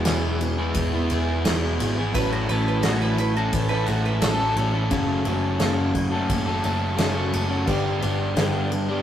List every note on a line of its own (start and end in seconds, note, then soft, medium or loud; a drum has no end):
0.05 0.72 E1 loud
0.05 0.75 E2 medium
0.05 0.75 B2 loud
0.05 0.40 E3 medium
0.05 0.40 F#3 medium
0.05 0.40 G#3 medium
0.05 0.40 B3 loud
0.05 0.41 E4 loud
0.05 0.40 G#4 medium
0.05 snare medium
0.05 ride loud
0.41 0.58 F#3 medium
0.41 0.58 G#3 medium
0.41 0.58 B3 medium
0.41 0.57 E4 medium
0.41 muted overdriven electric guitar stroke soft
0.41 ride medium
0.58 0.94 E3 medium
0.58 0.94 F#3 medium
0.58 0.94 G#3 medium
0.58 0.94 B3 medium
0.58 0.93 E4 medium
0.58 0.92 G#4 medium
0.75 1.08 E1 medium
0.75 kick loud
0.75 ride loud
0.93 1.10 E3 medium
0.93 1.44 F#3 medium
0.93 1.44 G#3 medium
0.93 1.10 B3 medium
0.93 1.11 E4 medium
0.93 1.12 G#4 medium
1.10 1.44 E1 medium
1.10 1.45 E3 medium
1.10 1.44 B3 medium
1.10 1.45 E4 medium
1.10 1.46 G#4 medium
1.10 ride medium
1.45 1.78 E1 medium
1.45 1.97 E2 medium
1.45 1.97 B2 medium
1.45 1.64 E3 loud
1.45 1.77 F#3 medium
1.45 1.78 G#3 medium
1.45 1.63 B3 medium
1.45 1.62 E4 medium
1.45 1.61 G#4 medium
1.45 snare loud
1.45 ride loud
1.63 1.79 E3 medium
1.63 1.79 B3 medium
1.63 1.80 E4 medium
1.63 1.81 G#4 medium
1.78 2.13 G#1 loud
1.78 1.99 E3 medium
1.78 1.96 F#3 medium
1.78 1.96 G#3 medium
1.78 1.99 B3 medium
1.78 1.97 E4 medium
1.78 ride medium
1.82 1.97 G#4 medium
1.97 2.14 E3 medium
1.97 2.11 F#3 medium
1.97 2.13 G#3 medium
1.97 2.14 B3 medium
1.97 2.13 E4 medium
1.97 2.13 G#4 medium
2.13 2.47 A1 medium
2.13 2.84 A2 medium
2.13 2.48 E3 loud
2.13 2.45 F#3 loud
2.13 2.50 A3 loud
2.13 2.50 C#4 loud
2.13 2.48 E4 loud
2.13 2.30 B4 loud
2.13 kick loud
2.13 ride loud
2.17 2.51 A4 loud
2.33 2.48 F#4 medium
2.46 2.82 A1 medium
2.46 2.85 E3 medium
2.46 2.81 F#3 medium
2.46 2.83 E4 medium
2.46 2.65 B4 medium
2.46 ride medium
2.50 2.86 A3 medium
2.50 2.87 C#4 medium
2.50 2.87 A4 medium
2.68 2.83 B4 medium
2.82 3.49 A1 loud
2.82 3.54 A2 medium
2.82 3.13 F#3 loud
2.82 3.16 E4 loud
2.82 2.99 F#4 medium
2.82 snare loud
2.82 ride medium
2.86 3.19 E3 loud
2.86 3.20 A3 loud
2.86 3.21 C#4 loud
2.86 3.20 A4 loud
3.02 3.17 B4 medium
3.15 3.34 F#3 medium
3.15 3.34 A3 medium
3.15 3.34 C#4 medium
3.15 3.32 E4 medium
3.15 ride medium
3.19 3.35 B4 medium
3.19 muted overdriven electric guitar stroke soft
3.34 3.67 E4 medium
3.34 3.52 F#4 medium
3.34 3.70 A4 medium
3.38 3.73 A3 medium
3.38 3.72 C#4 medium
3.53 3.85 A1 medium
3.53 3.68 B4 medium
3.53 kick loud
3.53 ride medium
3.69 4.21 E4 medium
3.69 3.89 A4 medium
3.69 3.86 B4 medium
3.73 3.88 A3 medium
3.73 3.89 C#4 medium
3.86 4.21 A1 medium
3.86 4.23 E3 medium
3.86 4.23 A3 medium
3.86 4.23 C#4 medium
3.86 4.03 F#4 medium
3.86 4.24 A4 medium
3.86 ride medium
4.05 4.21 B4 medium
4.21 4.55 A1 medium
4.21 4.74 A2 medium
4.21 4.56 E3 medium
4.21 4.55 F#3 medium
4.21 4.41 A3 loud
4.21 4.40 C#4 loud
4.21 4.57 E4 medium
4.21 4.56 A4 loud
4.21 snare loud
4.21 ride loud
4.25 4.39 A4 loud
4.40 4.57 A3 medium
4.40 4.57 C#4 medium
4.40 4.58 A4 medium
4.56 4.89 A1 loud
4.56 4.89 E3 medium
4.56 4.74 F#3 medium
4.56 4.75 A3 medium
4.56 4.73 C#4 medium
4.56 4.71 E4 medium
4.56 4.72 A4 medium
4.56 ride medium
4.73 4.90 A3 medium
4.73 4.90 C#4 medium
4.73 4.91 E4 medium
4.73 4.89 A4 medium
4.91 5.24 F#1 medium
4.91 5.58 F#2 medium
4.91 5.59 C#3 loud
4.91 5.24 F#3 loud
4.91 5.25 A3 loud
4.91 5.26 C#4 medium
4.91 5.25 F#4 medium
4.91 5.27 A4 loud
4.91 kick loud
4.91 ride medium
5.25 5.58 F#1 medium
5.25 5.59 F#3 medium
5.25 5.60 A3 medium
5.25 5.60 C#4 medium
5.25 5.59 F#4 medium
5.25 5.61 A4 medium
5.25 ride medium
5.60 6.26 F#1 loud
5.60 6.29 F#2 medium
5.60 6.30 C#3 medium
5.60 5.93 F#3 loud
5.60 5.94 A3 loud
5.60 5.94 C#4 loud
5.60 5.95 F#4 medium
5.60 5.94 A4 loud
5.60 snare loud
5.60 ride medium
5.93 6.12 F#3 medium
5.93 6.11 A3 medium
5.93 6.10 C#4 medium
5.93 6.08 F#4 medium
5.93 muted overdriven electric guitar stroke medium
5.93 kick medium
5.93 ride medium
6.09 6.45 C#4 medium
6.09 6.44 F#4 medium
6.09 6.44 A4 medium
6.14 6.47 F#3 medium
6.14 6.46 A3 medium
6.30 6.62 F#1 loud
6.30 kick loud
6.30 ride loud
6.45 6.62 F#3 medium
6.45 6.62 A3 medium
6.45 6.63 C#4 medium
6.45 6.96 F#4 medium
6.45 6.64 A4 medium
6.63 6.97 F#1 medium
6.63 6.97 F#3 medium
6.63 6.97 A3 medium
6.63 6.97 C#4 medium
6.63 6.98 A4 medium
6.63 ride medium
6.97 7.31 F#1 medium
6.97 7.50 F#2 medium
6.97 7.50 C#3 medium
6.97 7.15 F#3 medium
6.97 7.15 A3 medium
6.97 7.14 C#4 loud
6.97 7.32 F#4 loud
6.97 7.13 A4 medium
6.97 snare loud
6.97 ride loud
7.14 7.31 F#3 medium
7.14 7.32 A3 medium
7.14 7.33 C#4 medium
7.14 7.33 A4 medium
7.32 7.67 F#1 loud
7.32 7.50 F#3 medium
7.32 7.50 A3 medium
7.32 7.49 C#4 medium
7.32 7.48 F#4 medium
7.32 7.48 A4 medium
7.32 ride medium
7.49 7.66 F#3 medium
7.49 7.66 A3 medium
7.49 7.66 C#4 medium
7.49 7.67 F#4 medium
7.49 7.65 A4 medium
7.66 8.00 G1 loud
7.66 8.35 G2 medium
7.66 8.36 D3 medium
7.66 8.00 G3 loud
7.66 8.01 B3 loud
7.66 8.02 D4 loud
7.66 8.02 G4 loud
7.66 kick medium
7.66 crash medium
8.01 8.35 G1 medium
8.01 8.36 G3 medium
8.01 8.37 B3 medium
8.01 8.37 D4 medium
8.01 8.38 G4 medium
8.01 ride medium
8.36 9.02 G1 medium
8.36 9.02 G2 medium
8.36 9.02 D3 medium
8.36 8.71 G3 medium
8.36 8.73 B3 loud
8.36 8.72 D4 medium
8.36 8.72 G4 loud
8.36 snare loud
8.36 ride medium
8.70 8.88 G3 medium
8.70 8.89 B3 medium
8.70 8.88 D4 medium
8.70 8.87 G4 medium
8.70 muted overdriven electric guitar stroke soft
8.70 ride medium
8.89 9.02 G3 medium
8.89 9.02 B3 medium
8.89 9.02 D4 medium
8.89 9.02 G4 medium